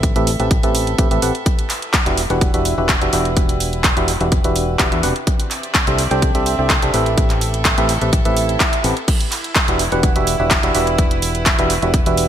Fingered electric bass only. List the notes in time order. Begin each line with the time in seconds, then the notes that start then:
Already playing: A1
0.16 A1
0.40 A1
0.63 A1
0.99 A1
1.11 A1
1.22 A1
2.06 E1
2.30 E1
2.54 E1
2.78 E1
3.02 E1
3.13 E1
3.97 E1
4.21 E1
4.44 E1
4.79 E1
4.92 E2
5.03 E1
5.87 C2
6.11 C2
6.35 C2
6.59 C2
6.83 C2
6.94 A1
7.78 A1
8.02 A1
8.25 A1
8.84 A1
9.68 E1
9.92 E1
10.16 E1
10.40 E1
10.63 E1
10.75 E1
11.59 E1
11.83 E1
12.06 E1